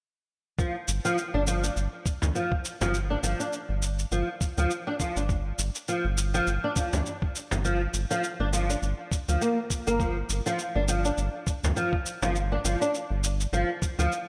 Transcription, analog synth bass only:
0.88 0.99 G1 medium
1.34 1.70 G1 medium
1.76 1.88 G1 medium
2.22 2.31 D2 medium
2.81 3.17 G1 medium
3.23 3.35 G1 medium
3.69 4.05 G1 medium
4.11 4.23 G1 medium
4.57 4.66 D2 medium
5.16 5.52 G1 medium
5.59 5.70 G1 medium
6.05 6.40 G1 medium
6.47 6.58 G1 medium
6.93 7.02 D2 medium
7.52 7.87 G1 medium
7.94 8.05 G1 medium
8.40 8.76 G1 medium
8.82 8.94 G1 medium
9.28 9.37 D2 medium
9.87 10.23 G1 medium
10.29 10.41 G1 medium
10.75 11.11 G1 medium
11.18 11.29 G1 medium
11.63 11.72 D2 medium
12.22 12.58 G1 medium
12.64 12.76 G1 medium
13.10 13.46 G1 medium
13.53 13.64 G1 medium
13.99 14.07 D2 medium

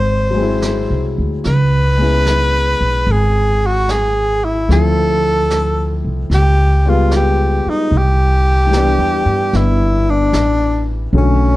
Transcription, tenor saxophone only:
0.00 1.15 C5 medium
1.47 3.13 B4 medium
3.11 3.68 G#4 medium
3.67 3.93 F#4 medium
3.91 4.46 G#4 medium
4.45 4.70 E4 medium
4.72 6.01 A4 medium
6.34 6.91 G4 medium
6.89 7.13 F4 medium
7.16 7.71 G4 medium
7.70 7.99 D#4 medium
7.97 9.58 G4 medium
9.56 10.12 E4 medium
10.10 10.88 D4 medium
11.18 11.57 C#4 medium

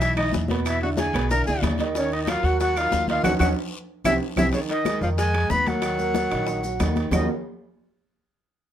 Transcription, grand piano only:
0.00 0.12 E3 medium
0.00 0.12 D#4 medium
0.00 0.12 E4 medium
0.18 0.45 E3 medium
0.18 0.44 D#4 medium
0.18 0.45 E4 medium
0.50 0.77 B2 medium
0.50 0.77 B3 medium
0.50 0.77 B4 medium
0.83 1.09 D3 medium
0.83 1.10 D4 medium
0.83 1.10 E4 medium
1.15 1.28 B2 medium
1.15 1.28 B3 medium
1.15 1.28 B4 medium
1.31 1.44 D3 medium
1.31 1.44 D4 medium
1.31 1.44 E4 medium
1.48 1.74 D3 medium
1.48 1.74 D4 medium
1.48 1.74 E4 medium
1.80 1.93 D#3 medium
1.80 1.93 D#4 medium
1.80 1.93 D#5 medium
1.97 2.23 D#3 medium
1.97 2.23 D#4 medium
1.97 2.23 D#5 medium
2.29 2.42 F#3 medium
2.29 2.42 F#4 medium
2.29 2.42 A#4 medium
2.45 2.71 F#3 medium
2.45 2.71 F#4 medium
2.45 2.71 A#4 medium
2.77 3.03 F#3 medium
2.77 3.03 D#4 medium
2.77 3.04 A#4 medium
3.09 3.22 D#3 medium
3.09 3.22 D#4 medium
3.09 3.23 D#5 medium
3.25 3.35 C#4 medium
3.25 3.35 D#4 medium
3.25 3.35 F#4 medium
3.40 3.51 C#4 loud
3.40 3.51 D#4 medium
3.40 3.51 F#4 loud
4.05 4.16 C4 medium
4.05 4.16 E4 medium
4.05 4.16 G4 medium
4.37 4.48 C4 loud
4.37 4.48 E4 medium
4.37 4.48 G4 medium
4.54 4.80 D#3 medium
4.54 4.81 D#4 medium
4.86 4.99 G#3 medium
4.86 4.99 G#4 medium
5.02 5.29 D#3 medium
5.02 5.29 D#4 medium
5.34 5.48 G#3 medium
5.34 5.48 G#4 medium
5.51 5.64 D#4 medium
5.51 5.64 D#5 medium
5.67 5.80 A#3 medium
5.67 5.81 A#4 medium
5.83 5.96 D#3 medium
5.83 5.97 D#4 medium
5.99 6.25 A#3 medium
5.99 6.26 A#4 medium
6.30 6.57 D#3 medium
6.30 6.58 D#4 medium
6.64 6.77 F#3 medium
6.64 6.77 F#4 medium
6.80 7.06 D#3 medium
6.80 7.07 D#4 medium
7.11 7.27 D#3 medium
7.11 7.27 A#3 medium
7.11 7.27 C#4 medium
7.11 7.27 D#4 medium
7.11 7.27 F4 medium
7.11 7.27 F#4 medium

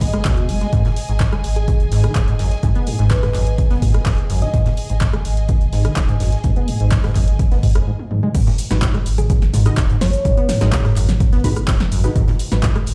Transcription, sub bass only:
0.00 0.18 G#1 medium
0.25 0.40 D#2 medium
0.49 0.64 F#1 loud
0.73 0.80 G#1 loud
1.09 1.37 G#1 medium
1.44 1.72 G#1 medium
1.80 2.08 G#1 medium
2.16 2.30 D#1 medium
2.39 2.54 G#1 loud
2.63 2.71 G#1 loud
2.99 3.27 G#1 medium
3.35 3.63 G#1 medium
3.71 3.99 G#1 medium
4.06 4.21 D#1 medium
4.30 4.44 G#1 loud
4.54 4.61 G#1 medium
4.90 5.18 G#1 medium
5.25 5.53 G#1 medium
5.61 5.89 G#1 medium
5.97 6.11 D#1 medium
6.20 6.35 G#1 loud
6.44 6.52 G#1 loud
6.80 7.08 G#1 medium
7.16 7.44 G#1 medium
7.52 7.80 G#1 medium
8.35 8.42 G#1 loud
8.71 8.99 G#1 medium
9.06 9.34 G#1 medium
9.42 9.70 G#1 medium
9.77 9.92 D#1 medium
10.01 10.16 G#1 loud
10.25 10.33 G#1 loud
10.61 10.89 G#1 medium
10.97 11.25 G#1 medium
11.33 11.61 G#1 medium
11.68 11.83 D#1 medium
11.92 12.06 G#1 loud
12.16 12.23 G#1 medium
12.52 12.80 G#1 medium
12.87 12.94 G#1 medium

